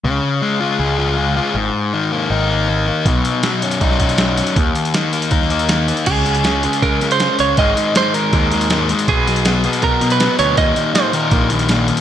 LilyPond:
<<
  \new Staff \with { instrumentName = "Clean electric guitar" } { \time 4/4 \key des \lydian \tempo 4 = 159 r1 | r1 | r1 | r1 |
aes'2 bes'8. c''8. des''8 | ees''4 c''8 bes'2 r8 | aes'2 bes'8. b'8. des''8 | ees''4 c''8 bes'2 r8 | }
  \new Staff \with { instrumentName = "Distorted electric guitar" } { \clef bass \time 4/4 \key des \lydian des4 aes8 f'8 aes'8 f'8 aes8 f'8 | aes,4 ees8 bes8 ees'8 bes8 ees8 bes8 | b,4 fis8 cis'8 dis'8 cis'8 fis8 cis'8 | ees,4 ees8 bes8 ees'8 bes8 ees8 bes8 |
<des aes des'>8 <des aes des'>8 <des aes des'>8 <des aes des'>8 <des aes des'>8 <des aes des'>8 <des aes des'>8 <des aes des'>8 | <aes, ees aes>8 <aes, ees aes>8 <aes, ees aes>8 <aes, ees aes>8 <aes, ees aes>8 <aes, ees aes>8 <aes, ees aes>8 <aes, ees aes>8 | <b, fis b>8 <b, fis b>8 <b, fis b>8 <b, fis b>8 <b, fis b>8 <b, fis b>8 <b, fis b>8 <b, fis b>8 | <ees, bes, ees>8 <ees, bes, ees>8 <ees, bes, ees>8 <ees, bes, ees>8 <ees, bes, ees>8 <ees, bes, ees>8 <ees, bes, ees>8 <ees, bes, ees>8 | }
  \new Staff \with { instrumentName = "Picked electric bass" } { \clef bass \time 4/4 \key des \lydian des,8 r4. des,2 | aes,,8 r4. aes,,2 | b,,8 r4. b,,2 | ees,8 r4. ees,2 |
des,2 des4. des,8 | aes,,8 r4. ees,2 | b,,2 b,4. d,8 | ees,8 r4. bes,,2 | }
  \new DrumStaff \with { instrumentName = "Drums" } \drummode { \time 4/4 r4 r4 r4 r4 | r4 r4 r4 r4 | <hh bd>8 hh8 <hh sn>8 hh16 hh16 <hh bd>16 sn16 <hh bd>16 hh16 <hh sn>8 hh16 hh16 | <hh bd>8 hh16 hh16 <hh sn>8 hh16 hh16 <hh bd>16 sn16 hh16 hh16 <hh sn>8 hh16 hh16 |
<cymc hh bd>8 hh16 hh16 <hh sn>8 hh16 hh16 <hh bd>8 <hh sn>16 hh16 <hh sn>8 hh8 | <hh bd>8 hh8 <hh sn>8 hh8 <hh bd>8 hh16 hh16 <hh sn>8 hh16 hh16 | <hh bd>8 hh16 hh16 <hh sn>8 hh16 hh16 <hh bd>8 hh16 hh16 <hh sn>8 hh8 | <hh bd>8 hh8 <hh sn>8 hh8 <hh bd>8 hh16 hh16 <hh sn>8 hh16 hh16 | }
>>